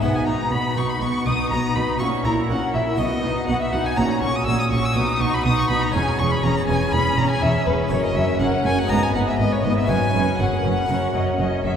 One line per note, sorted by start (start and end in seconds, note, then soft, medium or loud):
0.00 0.11 B1 soft
0.00 0.10 B2 soft
0.00 0.25 B2 soft
0.00 0.26 B3 soft
0.00 1.95 D#4 soft
0.00 0.25 F#4 soft
0.00 1.96 B4 soft
0.00 0.14 F#5 soft
0.00 0.17 F#5 medium
0.14 0.27 G#5 soft
0.14 0.27 G#5 medium
0.26 0.36 B1 soft
0.26 0.35 B2 soft
0.26 0.49 B2 soft
0.26 0.52 D#4 soft
0.26 0.52 B4 soft
0.26 0.51 A#5 medium
0.26 0.53 A#5 medium
0.51 0.60 B1 medium
0.51 0.59 B2 soft
0.51 0.74 B2 soft
0.51 0.77 B3 soft
0.51 0.77 F#4 soft
0.51 0.76 B5 medium
0.51 0.79 B5 medium
0.76 0.84 B1 soft
0.76 0.84 B2 soft
0.76 0.99 B2 soft
0.76 1.02 D#4 soft
0.76 1.02 B4 soft
0.76 0.91 C#6 medium
0.76 0.89 C#6 medium
0.89 1.02 B5 soft
0.89 1.03 B5 medium
1.00 1.09 B1 soft
1.00 1.08 B2 soft
1.00 1.24 B2 soft
1.00 1.25 B3 soft
1.00 1.25 F#4 soft
1.00 1.27 C#6 medium
1.26 1.34 B1 soft
1.26 1.34 B2 soft
1.26 1.49 B2 soft
1.26 1.51 D#4 soft
1.26 1.52 B4 soft
1.26 1.50 D#6 medium
1.26 1.51 D#6 medium
1.50 1.59 B1 soft
1.50 1.58 B2 soft
1.50 1.74 B2 soft
1.50 1.76 B3 soft
1.50 1.76 F#4 soft
1.50 1.77 A#5 medium
1.50 1.59 A#5 medium
1.75 1.83 B1 soft
1.75 1.83 B2 soft
1.75 1.98 B2 soft
1.75 2.00 D#4 soft
1.75 2.01 B4 soft
1.75 1.98 B5 medium
1.75 1.83 B5 soft
1.98 2.08 A#1 medium
1.98 2.08 A#2 medium
1.98 2.23 A#2 soft
1.98 2.23 C#4 soft
1.98 2.94 F#4 soft
1.98 2.24 F#4 soft
1.98 2.96 E5 soft
1.98 2.07 C#6 medium
1.98 2.24 C#6 medium
2.24 2.33 A#1 medium
2.24 2.32 A#2 soft
2.24 2.47 A#2 soft
2.24 2.50 E4 soft
2.24 2.50 A#4 soft
2.24 2.49 A#5 medium
2.24 2.33 A#5 medium
2.49 2.58 A#1 medium
2.49 2.57 A#2 medium
2.49 2.72 A#2 soft
2.49 2.74 C#4 soft
2.49 2.75 F#4 soft
2.49 2.58 F#5 medium
2.49 2.74 F#5 medium
2.74 2.83 A#1 medium
2.74 2.82 A#2 medium
2.74 2.97 A#2 soft
2.74 2.99 E4 soft
2.74 2.99 A#4 soft
2.74 3.00 E5 medium
2.74 2.83 E5 medium
2.96 3.07 B1 medium
2.96 3.06 B2 soft
2.96 3.21 B2 soft
2.96 3.22 B3 soft
2.96 3.93 F#4 soft
2.96 3.22 F#4 soft
2.96 3.94 D#5 soft
2.96 3.47 D#5 medium
3.23 3.32 B1 soft
3.23 3.45 B2 soft
3.23 3.31 B2 soft
3.23 3.48 D#4 soft
3.23 3.48 B4 soft
3.47 3.56 B1 medium
3.47 3.70 B2 soft
3.47 3.56 B2 medium
3.47 3.73 B3 soft
3.47 3.73 F#4 soft
3.47 3.60 F#5 medium
3.47 3.61 F#5 medium
3.60 3.72 E5 medium
3.60 3.74 E5 medium
3.72 3.81 B1 medium
3.72 3.80 B2 medium
3.72 3.95 B2 soft
3.72 3.98 D#4 soft
3.72 3.98 B4 soft
3.72 3.87 F#5 medium
3.72 3.85 F#5 medium
3.85 3.97 G#5 medium
3.85 3.99 G#5 medium
3.95 4.05 A#1 medium
3.95 4.05 A#2 medium
3.95 4.20 A#2 soft
3.95 4.21 C#4 soft
3.95 4.91 F#4 soft
3.95 4.21 F#4 soft
3.95 4.93 C#5 soft
3.95 4.22 A#5 medium
3.95 4.21 A#5 medium
4.22 4.30 A#1 medium
4.22 4.44 A#2 soft
4.22 4.30 A#2 medium
4.22 4.45 C#4 soft
4.22 4.46 F#4 soft
4.22 4.34 C#6 medium
4.22 4.37 C#6 medium
4.34 4.46 D#6 medium
4.46 4.55 A#1 medium
4.46 4.69 A#2 soft
4.46 4.54 A#2 medium
4.46 4.70 C#4 soft
4.46 4.70 F#4 soft
4.46 4.59 E6 medium
4.59 4.71 D#6 medium
4.59 4.64 D#6 medium
4.70 4.79 A#1 medium
4.70 4.93 A#2 soft
4.70 4.79 A#2 medium
4.70 4.96 C#4 soft
4.70 4.96 F#4 soft
4.70 4.83 C#6 medium
4.70 4.87 C#6 medium
4.83 4.95 E6 medium
4.83 4.97 E6 medium
4.92 5.04 B1 medium
4.92 5.18 B2 medium
4.92 5.04 B2 medium
4.92 5.19 D#4 soft
4.92 5.90 F#4 soft
4.92 5.90 B4 soft
4.92 5.20 D#6 medium
4.92 5.22 D#6 medium
4.97 5.20 F#4 medium
5.20 5.29 B1 medium
5.20 5.42 B2 soft
5.20 5.28 B2 medium
5.20 5.44 D#4 medium
5.20 5.45 F#4 medium
5.20 5.33 C#6 medium
5.20 5.35 C#6 medium
5.33 5.45 B5 medium
5.45 5.54 B1 medium
5.45 5.67 B2 soft
5.45 5.53 B2 medium
5.45 5.69 D#4 medium
5.45 5.69 F#4 medium
5.45 5.57 D#6 medium
5.57 5.70 C#6 medium
5.57 5.69 C#6 medium
5.70 5.78 B1 medium
5.70 5.78 B2 soft
5.70 5.92 B2 soft
5.70 5.94 D#4 medium
5.70 5.94 F#4 soft
5.70 5.82 B5 medium
5.70 5.84 B5 medium
5.82 5.94 A#5 medium
5.89 7.85 G#3 soft
5.89 7.86 C#4 soft
5.89 7.86 C#5 soft
5.94 6.02 E1 medium
5.94 6.16 E2 soft
5.94 6.03 E2 medium
5.94 6.18 C#4 medium
5.94 6.19 G#4 medium
5.94 6.20 G#5 medium
5.94 6.19 G#5 medium
6.19 6.27 E1 medium
6.19 6.41 E2 soft
6.19 6.27 E2 medium
6.19 6.43 C#4 medium
6.19 6.42 G#4 soft
6.19 6.33 C#6 medium
6.19 6.31 C#6 medium
6.31 6.45 B5 medium
6.31 6.36 B5 medium
6.43 6.52 E1 medium
6.43 6.52 E2 medium
6.43 6.66 E2 soft
6.43 6.68 C#4 medium
6.43 6.66 G#4 soft
6.43 6.67 A#5 medium
6.43 6.52 A#5 medium
6.68 6.76 E1 medium
6.68 6.91 E2 soft
6.68 6.77 E2 medium
6.68 6.93 C#4 soft
6.68 6.92 G#4 medium
6.68 6.94 G#5 medium
6.68 6.93 G#5 medium
6.92 7.01 E1 medium
6.92 7.15 E2 soft
6.92 7.02 E2 medium
6.92 7.17 C#4 medium
6.92 7.16 G#4 medium
6.92 7.20 B5 medium
6.92 7.17 B5 medium
7.16 7.25 E1 medium
7.16 7.25 E2 soft
7.16 7.40 E2 soft
7.16 7.41 C#4 medium
7.16 7.41 G#4 soft
7.16 7.29 A#5 medium
7.16 7.30 A#5 medium
7.29 7.42 G#5 medium
7.29 7.44 G#5 medium
7.42 7.50 E1 medium
7.42 7.64 E2 soft
7.42 7.51 E2 medium
7.42 7.66 C#4 medium
7.42 7.66 G#4 medium
7.42 7.67 E5 medium
7.42 7.68 E5 medium
7.66 7.75 E1 medium
7.66 7.75 E2 medium
7.66 7.89 E2 soft
7.66 7.91 C#4 medium
7.66 7.91 G#4 soft
7.66 7.74 B4 medium
7.66 7.92 B4 medium
7.87 8.85 A#3 soft
7.87 8.86 F#4 soft
7.87 8.86 C#5 soft
7.91 7.99 F#1 medium
7.91 8.13 F#2 soft
7.91 7.99 F#2 medium
7.91 8.15 C#4 medium
7.91 8.15 A#4 medium
7.91 8.03 C#5 medium
8.03 8.16 D#5 medium
8.03 8.18 D#5 medium
8.16 8.24 F#1 medium
8.16 8.38 F#2 soft
8.16 8.24 F#2 medium
8.16 8.39 C#4 soft
8.16 8.39 A#4 soft
8.16 8.40 E5 medium
8.16 8.39 E5 medium
8.40 8.48 F#1 medium
8.40 8.63 F#2 medium
8.40 8.49 F#2 medium
8.40 8.64 C#4 medium
8.40 8.65 A#4 medium
8.40 8.64 F#5 medium
8.40 8.48 F#5 medium
8.64 8.73 F#1 medium
8.64 8.87 F#2 soft
8.64 8.74 F#2 medium
8.64 8.89 C#4 soft
8.64 8.90 A#4 soft
8.64 8.78 G#5 medium
8.64 8.80 G#5 medium
8.77 8.90 F#5 medium
8.77 8.91 F#5 medium
8.83 9.83 G#3 medium
8.83 9.84 B3 soft
8.83 9.85 D#4 soft
8.88 8.97 G#1 medium
8.88 9.12 G#2 soft
8.88 8.98 G#2 medium
8.88 9.13 B3 medium
8.88 9.86 B4 soft
8.88 9.14 B4 soft
8.88 9.05 A#5 medium
8.88 9.02 A#5 medium
9.03 9.15 G#5 medium
9.03 9.14 G#5 medium
9.14 9.22 G#1 medium
9.14 9.37 G#2 soft
9.14 9.23 G#2 soft
9.14 9.38 B3 soft
9.14 9.38 B4 soft
9.14 9.19 F#5 medium
9.14 9.28 F#5 medium
9.28 9.38 E5 medium
9.28 9.40 E5 medium
9.39 9.47 G#1 medium
9.39 9.47 G#2 medium
9.39 9.62 G#2 soft
9.39 9.63 B3 soft
9.39 9.63 B4 medium
9.39 9.54 D#5 medium
9.39 9.52 D#5 medium
9.52 9.65 C#5 medium
9.52 9.65 C#5 soft
9.64 9.72 G#1 medium
9.64 9.87 G#2 soft
9.64 9.73 G#2 medium
9.64 9.89 B3 soft
9.64 9.89 B4 soft
9.64 9.77 D#5 medium
9.77 9.90 E5 medium
9.84 10.84 C#4 soft
9.84 10.85 F#4 soft
9.84 10.86 B4 soft
9.89 9.97 F#1 medium
9.89 10.12 F#2 soft
9.89 9.98 F#2 medium
9.89 10.13 C#4 soft
9.89 10.14 B4 soft
9.89 10.41 G#5 medium
9.89 10.40 G#5 medium
10.14 10.22 F#1 medium
10.14 10.37 F#2 soft
10.14 10.23 F#2 soft
10.14 10.38 C#4 soft
10.14 10.39 B4 soft
10.39 10.47 F#1 medium
10.39 10.62 F#2 soft
10.39 10.48 F#2 medium
10.39 10.63 C#4 soft
10.39 10.51 G#4 medium
10.39 11.40 F#5 medium
10.39 11.41 F#5 medium
10.54 10.65 A#4 soft
10.64 10.73 F#1 medium
10.64 10.87 F#2 soft
10.64 10.73 F#2 medium
10.64 10.89 C#4 soft
10.64 10.90 B4 medium
10.85 11.77 C#4 soft
10.85 11.77 F#4 soft
10.85 11.77 A#4 soft
10.89 10.98 F#1 medium
10.89 11.12 F#2 soft
10.89 10.98 F#2 soft
10.89 11.13 C#4 soft
10.89 11.15 C#5 medium
11.15 11.23 F#1 medium
11.15 11.37 F#2 soft
11.15 11.23 F#2 soft
11.15 11.38 C#4 soft
11.15 11.27 D#5 medium
11.29 11.41 C#5 medium
11.39 11.48 F#1 soft
11.39 11.62 F#2 soft
11.39 11.48 F#2 soft
11.39 11.64 C#4 soft
11.39 11.65 D#5 medium
11.64 11.73 F#1 medium
11.64 11.77 F#2 soft
11.64 11.74 F#2 soft
11.64 11.77 C#4 soft
11.64 11.77 E5 medium